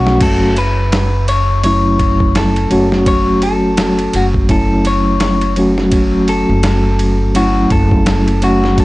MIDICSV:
0, 0, Header, 1, 6, 480
1, 0, Start_track
1, 0, Key_signature, 3, "minor"
1, 0, Tempo, 714286
1, 140, Time_signature, 4, 2, 24, 8
1, 5946, End_track
2, 0, Start_track
2, 0, Title_t, "Clean electric guitar"
2, 0, Program_c, 0, 27
2, 0, Note_on_c, 0, 66, 88
2, 147, Note_off_c, 0, 66, 0
2, 150, Note_on_c, 0, 69, 100
2, 387, Note_off_c, 0, 69, 0
2, 390, Note_on_c, 0, 71, 102
2, 862, Note_off_c, 0, 71, 0
2, 865, Note_on_c, 0, 73, 99
2, 1095, Note_off_c, 0, 73, 0
2, 1103, Note_on_c, 0, 73, 106
2, 1590, Note_off_c, 0, 73, 0
2, 1592, Note_on_c, 0, 69, 97
2, 1940, Note_off_c, 0, 69, 0
2, 2067, Note_on_c, 0, 73, 106
2, 2304, Note_off_c, 0, 73, 0
2, 2306, Note_on_c, 0, 69, 100
2, 2797, Note_off_c, 0, 69, 0
2, 2797, Note_on_c, 0, 66, 90
2, 2859, Note_off_c, 0, 66, 0
2, 3030, Note_on_c, 0, 69, 87
2, 3269, Note_off_c, 0, 69, 0
2, 3271, Note_on_c, 0, 73, 97
2, 3719, Note_off_c, 0, 73, 0
2, 4227, Note_on_c, 0, 69, 93
2, 4944, Note_off_c, 0, 69, 0
2, 4947, Note_on_c, 0, 66, 87
2, 5184, Note_off_c, 0, 66, 0
2, 5187, Note_on_c, 0, 69, 89
2, 5667, Note_off_c, 0, 69, 0
2, 5670, Note_on_c, 0, 66, 87
2, 5910, Note_off_c, 0, 66, 0
2, 5913, Note_on_c, 0, 69, 98
2, 5946, Note_off_c, 0, 69, 0
2, 5946, End_track
3, 0, Start_track
3, 0, Title_t, "Synth texture"
3, 0, Program_c, 1, 99
3, 0, Note_on_c, 1, 61, 86
3, 0, Note_on_c, 1, 76, 81
3, 152, Note_off_c, 1, 61, 0
3, 167, Note_off_c, 1, 76, 0
3, 5946, End_track
4, 0, Start_track
4, 0, Title_t, "Tine electric piano"
4, 0, Program_c, 2, 4
4, 0, Note_on_c, 2, 54, 92
4, 0, Note_on_c, 2, 57, 82
4, 0, Note_on_c, 2, 61, 82
4, 0, Note_on_c, 2, 66, 106
4, 380, Note_off_c, 2, 54, 0
4, 382, Note_off_c, 2, 57, 0
4, 382, Note_off_c, 2, 61, 0
4, 385, Note_off_c, 2, 66, 0
4, 1101, Note_on_c, 2, 54, 81
4, 1104, Note_on_c, 2, 57, 71
4, 1110, Note_on_c, 2, 61, 70
4, 1115, Note_on_c, 2, 64, 87
4, 1796, Note_off_c, 2, 54, 0
4, 1798, Note_off_c, 2, 57, 0
4, 1801, Note_off_c, 2, 61, 0
4, 1803, Note_off_c, 2, 64, 0
4, 1815, Note_on_c, 2, 54, 92
4, 1820, Note_on_c, 2, 57, 80
4, 1826, Note_on_c, 2, 61, 86
4, 1829, Note_on_c, 2, 66, 102
4, 2994, Note_off_c, 2, 54, 0
4, 2996, Note_off_c, 2, 57, 0
4, 2999, Note_off_c, 2, 61, 0
4, 3001, Note_off_c, 2, 66, 0
4, 3015, Note_on_c, 2, 54, 78
4, 3020, Note_on_c, 2, 57, 71
4, 3024, Note_on_c, 2, 61, 76
4, 3031, Note_on_c, 2, 64, 87
4, 3714, Note_off_c, 2, 54, 0
4, 3716, Note_off_c, 2, 57, 0
4, 3718, Note_off_c, 2, 61, 0
4, 3722, Note_off_c, 2, 64, 0
4, 3741, Note_on_c, 2, 54, 90
4, 3747, Note_on_c, 2, 57, 80
4, 3750, Note_on_c, 2, 61, 88
4, 3756, Note_on_c, 2, 66, 99
4, 4916, Note_off_c, 2, 54, 0
4, 4919, Note_off_c, 2, 57, 0
4, 4921, Note_off_c, 2, 61, 0
4, 4924, Note_off_c, 2, 66, 0
4, 4938, Note_on_c, 2, 54, 84
4, 4940, Note_on_c, 2, 57, 76
4, 4945, Note_on_c, 2, 61, 76
4, 4950, Note_on_c, 2, 64, 91
4, 5635, Note_off_c, 2, 54, 0
4, 5636, Note_off_c, 2, 57, 0
4, 5639, Note_off_c, 2, 61, 0
4, 5641, Note_off_c, 2, 64, 0
4, 5660, Note_on_c, 2, 54, 96
4, 5664, Note_on_c, 2, 57, 85
4, 5668, Note_on_c, 2, 61, 87
4, 5673, Note_on_c, 2, 66, 97
4, 5946, Note_off_c, 2, 54, 0
4, 5946, Note_off_c, 2, 57, 0
4, 5946, Note_off_c, 2, 61, 0
4, 5946, Note_off_c, 2, 66, 0
4, 5946, End_track
5, 0, Start_track
5, 0, Title_t, "Upright bass"
5, 0, Program_c, 3, 32
5, 0, Note_on_c, 3, 35, 95
5, 119, Note_off_c, 3, 35, 0
5, 141, Note_on_c, 3, 30, 101
5, 1801, Note_off_c, 3, 30, 0
5, 1827, Note_on_c, 3, 30, 78
5, 2764, Note_off_c, 3, 30, 0
5, 2782, Note_on_c, 3, 30, 74
5, 4335, Note_off_c, 3, 30, 0
5, 4362, Note_on_c, 3, 30, 92
5, 4843, Note_off_c, 3, 30, 0
5, 4843, Note_on_c, 3, 31, 102
5, 5162, Note_off_c, 3, 31, 0
5, 5180, Note_on_c, 3, 30, 104
5, 5946, Note_off_c, 3, 30, 0
5, 5946, End_track
6, 0, Start_track
6, 0, Title_t, "Drums"
6, 44, Note_on_c, 9, 38, 54
6, 111, Note_off_c, 9, 38, 0
6, 138, Note_on_c, 9, 49, 89
6, 138, Note_on_c, 9, 51, 81
6, 139, Note_on_c, 9, 36, 103
6, 206, Note_off_c, 9, 49, 0
6, 206, Note_off_c, 9, 51, 0
6, 207, Note_off_c, 9, 36, 0
6, 380, Note_on_c, 9, 51, 66
6, 447, Note_off_c, 9, 51, 0
6, 620, Note_on_c, 9, 51, 85
6, 624, Note_on_c, 9, 38, 110
6, 687, Note_off_c, 9, 51, 0
6, 691, Note_off_c, 9, 38, 0
6, 860, Note_on_c, 9, 51, 73
6, 927, Note_off_c, 9, 51, 0
6, 1099, Note_on_c, 9, 51, 82
6, 1166, Note_off_c, 9, 51, 0
6, 1339, Note_on_c, 9, 36, 87
6, 1340, Note_on_c, 9, 51, 62
6, 1407, Note_off_c, 9, 36, 0
6, 1407, Note_off_c, 9, 51, 0
6, 1480, Note_on_c, 9, 36, 92
6, 1547, Note_off_c, 9, 36, 0
6, 1580, Note_on_c, 9, 51, 83
6, 1584, Note_on_c, 9, 38, 107
6, 1647, Note_off_c, 9, 51, 0
6, 1651, Note_off_c, 9, 38, 0
6, 1722, Note_on_c, 9, 51, 44
6, 1790, Note_off_c, 9, 51, 0
6, 1819, Note_on_c, 9, 51, 67
6, 1886, Note_off_c, 9, 51, 0
6, 1963, Note_on_c, 9, 38, 41
6, 2031, Note_off_c, 9, 38, 0
6, 2058, Note_on_c, 9, 51, 84
6, 2060, Note_on_c, 9, 36, 105
6, 2126, Note_off_c, 9, 51, 0
6, 2127, Note_off_c, 9, 36, 0
6, 2297, Note_on_c, 9, 51, 69
6, 2364, Note_off_c, 9, 51, 0
6, 2536, Note_on_c, 9, 51, 88
6, 2540, Note_on_c, 9, 38, 112
6, 2603, Note_off_c, 9, 51, 0
6, 2607, Note_off_c, 9, 38, 0
6, 2679, Note_on_c, 9, 51, 46
6, 2746, Note_off_c, 9, 51, 0
6, 2778, Note_on_c, 9, 51, 74
6, 2846, Note_off_c, 9, 51, 0
6, 2919, Note_on_c, 9, 36, 93
6, 2987, Note_off_c, 9, 36, 0
6, 3017, Note_on_c, 9, 51, 87
6, 3019, Note_on_c, 9, 36, 107
6, 3084, Note_off_c, 9, 51, 0
6, 3086, Note_off_c, 9, 36, 0
6, 3258, Note_on_c, 9, 51, 69
6, 3325, Note_off_c, 9, 51, 0
6, 3495, Note_on_c, 9, 51, 84
6, 3498, Note_on_c, 9, 38, 113
6, 3562, Note_off_c, 9, 51, 0
6, 3565, Note_off_c, 9, 38, 0
6, 3638, Note_on_c, 9, 51, 45
6, 3705, Note_off_c, 9, 51, 0
6, 3738, Note_on_c, 9, 51, 64
6, 3805, Note_off_c, 9, 51, 0
6, 3882, Note_on_c, 9, 38, 49
6, 3950, Note_off_c, 9, 38, 0
6, 3975, Note_on_c, 9, 51, 83
6, 3978, Note_on_c, 9, 36, 102
6, 4042, Note_off_c, 9, 51, 0
6, 4045, Note_off_c, 9, 36, 0
6, 4218, Note_on_c, 9, 51, 66
6, 4285, Note_off_c, 9, 51, 0
6, 4456, Note_on_c, 9, 51, 85
6, 4459, Note_on_c, 9, 38, 109
6, 4523, Note_off_c, 9, 51, 0
6, 4526, Note_off_c, 9, 38, 0
6, 4699, Note_on_c, 9, 51, 70
6, 4766, Note_off_c, 9, 51, 0
6, 4938, Note_on_c, 9, 51, 84
6, 5005, Note_off_c, 9, 51, 0
6, 5177, Note_on_c, 9, 51, 68
6, 5178, Note_on_c, 9, 36, 96
6, 5244, Note_off_c, 9, 51, 0
6, 5245, Note_off_c, 9, 36, 0
6, 5318, Note_on_c, 9, 36, 97
6, 5385, Note_off_c, 9, 36, 0
6, 5417, Note_on_c, 9, 51, 86
6, 5421, Note_on_c, 9, 38, 108
6, 5485, Note_off_c, 9, 51, 0
6, 5488, Note_off_c, 9, 38, 0
6, 5561, Note_on_c, 9, 51, 44
6, 5628, Note_off_c, 9, 51, 0
6, 5658, Note_on_c, 9, 51, 68
6, 5725, Note_off_c, 9, 51, 0
6, 5804, Note_on_c, 9, 38, 41
6, 5871, Note_off_c, 9, 38, 0
6, 5899, Note_on_c, 9, 36, 101
6, 5899, Note_on_c, 9, 51, 83
6, 5946, Note_off_c, 9, 36, 0
6, 5946, Note_off_c, 9, 51, 0
6, 5946, End_track
0, 0, End_of_file